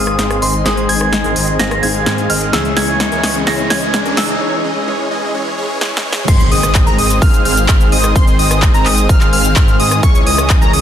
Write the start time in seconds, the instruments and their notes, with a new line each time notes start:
Already playing: detuned saw bass G#1, grand piano G#2 G#3 C4 D#4 G#4, supersaw synth D#3 G#3 C4 G#4 F5, analog synth pad G#4 C5 D#5 C6, synth bell D#6, riser
0.07 cross-stick, closed hi-hat
0.19 detuned saw bass G#1, supersaw synth D#3 G#3 C4 G#4 F5, snare, closed hi-hat
0.30 cross-stick, closed hi-hat
0.42 detuned saw bass G#1, supersaw synth D#3 G#3 C4 G#4 D#5, synth bell C6, open hi-hat
0.54 closed hi-hat
0.64 detuned saw bass G#1, grand piano G#2 G#3 C4 D#4 G#4, supersaw synth D#3 G#3 C4 G#4 C5, synth bell D#6, snare, closed hi-hat
0.77 closed hi-hat
0.89 detuned saw bass G#1, supersaw synth D#3 G#3 C4 G#4 D#5, synth bell G#6, open hi-hat
1.01 cross-stick
1.13 snare, closed hi-hat
1.24 detuned saw bass G#1, supersaw synth D#3 G#3 C4 G#4 A#4, closed hi-hat
1.36 detuned saw bass G#1, supersaw synth D#3 G#3 C4 G#4 D#5, open hi-hat
1.48 closed hi-hat
1.59 detuned saw bass G#1, supersaw synth D#3 G#3 C4 G#4 F5, synth bell A#6, snare, closed hi-hat
1.71 cross-stick, closed hi-hat
1.82 detuned saw bass G#1, grand piano G#2 G#3 C4 D#4 G#4, supersaw synth D#3 G#3 C4 G#4 F5, synth bell G#6, open hi-hat
1.95 closed hi-hat
2.06 detuned saw bass G#2, supersaw synth D#3 G#3 C4 G#4 F5, snare, closed hi-hat
2.18 closed hi-hat
2.30 detuned saw bass G#1, supersaw synth D#3 G#3 C4 G#4 D#5, synth bell F6, open hi-hat
2.42 closed hi-hat
2.52 detuned saw bass C#2, grand piano C#3 G#3 C#4 E4 G#4, supersaw synth E3 G#3 C#4 G#4 C#5, analog synth pad E4 C#5 C#6, synth bell E6, snare, closed hi-hat
2.65 closed hi-hat
2.76 detuned saw bass C#2, supersaw synth E3 G#3 C#4 G#4 D#5, synth bell G#6, snare, open hi-hat
2.88 closed hi-hat
3.00 snare, closed hi-hat
3.12 detuned saw bass C#2, supersaw synth E3 G#3 C#4 G#4 A#4, closed hi-hat
3.23 detuned saw bass C#2, supersaw synth E3 G#3 C#4 G#4 D#5, snare, open hi-hat
3.35 closed hi-hat
3.46 detuned saw bass C#2, grand piano C#3 G#3 C#4 E4 G#4, supersaw synth E3 G#3 C#4 G#4 C#5, synth bell A#6, snare, open hi-hat
3.59 closed hi-hat
3.70 detuned saw bass C#2, supersaw synth E3 G#3 C#4 G#4 D#5, synth bell G#6, snare, open hi-hat
3.82 closed hi-hat
3.94 snare, closed hi-hat
4.05 detuned saw bass C#2, supersaw synth E3 G#3 C#4 G#4 A#4, closed hi-hat
4.17 detuned saw bass C#2, supersaw synth E3 G#3 C#4 G#4 D#5, synth bell E6, snare, open hi-hat
4.29 closed hi-hat
4.41 supersaw synth E3 G#3 C#4 G#4 C#5
4.64 supersaw synth E3 G#3 C#4 G#4 D#5
4.87 supersaw synth E3 G#3 C#4 G#4 C#5
5.11 supersaw synth E3 G#3 C#4 G#4 D#5
5.34 supersaw synth E3 G#3 C#4 G#4 C#5
5.58 supersaw synth E3 G#3 C#4 G#4 C#5
5.81 supersaw synth E3 G#3 C#4 G#4 C#5, snare
5.97 snare
6.05 supersaw synth E3 G#3 C#4 G#4 C#5
6.13 snare
6.28 detuned saw bass G#1, supersaw synth D#3 G#3 C4 G#4, analog synth pad D#3 G#3 C4 G#4 C5, digital synth lead C6, kick, closed hi-hat, crash, impact, shaker
6.40 closed hi-hat, shaker
6.52 detuned saw bass G#1, supersaw synth D#3 G#3 C4 G#4 D#5, digital synth lead D#6, open hi-hat
6.63 cross-stick, closed hi-hat, shaker
6.75 kick, clap, closed hi-hat, shaker
6.87 detuned saw bass G#1, supersaw synth D#3 G#3 C4 G#4 A#4, digital synth lead A#5, closed hi-hat, shaker
6.98 detuned saw bass G#1, supersaw synth D#3 G#3 C4 G#4 D#5, digital synth lead D#6, open hi-hat
7.10 closed hi-hat, shaker
7.22 detuned saw bass G#1, digital synth lead F6, kick, open hi-hat, shaker
7.34 closed hi-hat, shaker
7.45 detuned saw bass G#1, supersaw synth D#3 G#3 C4 G#4 F5, digital synth lead F6, open hi-hat
7.57 shaker
7.68 detuned saw bass G#1, digital synth lead F6, kick, clap, closed hi-hat, shaker
7.81 closed hi-hat, shaker
7.92 detuned saw bass G#1, supersaw synth D#3 G#3 C4 G#4 D#5, digital synth lead D#6, open hi-hat
8.04 cross-stick, closed hi-hat, shaker
8.16 detuned saw bass G#1, supersaw synth D#3 G#3 C4 G#4 C5, digital synth lead C6, kick, closed hi-hat, shaker
8.27 closed hi-hat, shaker
8.39 detuned saw bass G#1, supersaw synth D#3 G#3 C4 G#4 D#5, digital synth lead D#6, open hi-hat
8.51 cross-stick, shaker
8.62 kick, clap, closed hi-hat, shaker
8.74 detuned saw bass G#1, supersaw synth D#3 G#3 C4 G#4 A#4, digital synth lead A#5, closed hi-hat, shaker
8.86 detuned saw bass G#1, supersaw synth D#3 G#3 C4 G#4 D#5, digital synth lead D#6, clap, open hi-hat
8.98 shaker
9.09 detuned saw bass G#1, supersaw synth G#3 C4, digital synth lead F6, kick, closed hi-hat, shaker
9.21 clap, closed hi-hat, shaker
9.33 detuned saw bass G#1, supersaw synth D#3 G#3 C4 G#4 F5, digital synth lead F6, open hi-hat
9.45 closed hi-hat, shaker
9.56 detuned saw bass G#2, digital synth lead F6, kick, clap, closed hi-hat, shaker
9.68 closed hi-hat, shaker
9.80 detuned saw bass G#2, supersaw synth D#3 G#3 C4 G#4 D#5, digital synth lead D#6, open hi-hat
9.91 cross-stick, closed hi-hat, shaker
10.03 detuned saw bass C#2, analog synth pad E3 C#4 C#5, supersaw synth E3 G#3 C#4 G#4, digital synth lead C#6, kick, closed hi-hat, shaker
10.15 closed hi-hat, shaker
10.26 detuned saw bass C#2, supersaw synth E3 G#3 C#4 G#4 D#5, digital synth lead D#6, open hi-hat
10.38 cross-stick, closed hi-hat, shaker
10.50 kick, clap, closed hi-hat, shaker
10.62 detuned saw bass C#2, supersaw synth E3 G#3 C#4 G#4 A#4, digital synth lead A#5, closed hi-hat, shaker
10.73 detuned saw bass C#2, supersaw synth E3 G#3 C#4 G#4 D#5, digital synth lead D#6, open hi-hat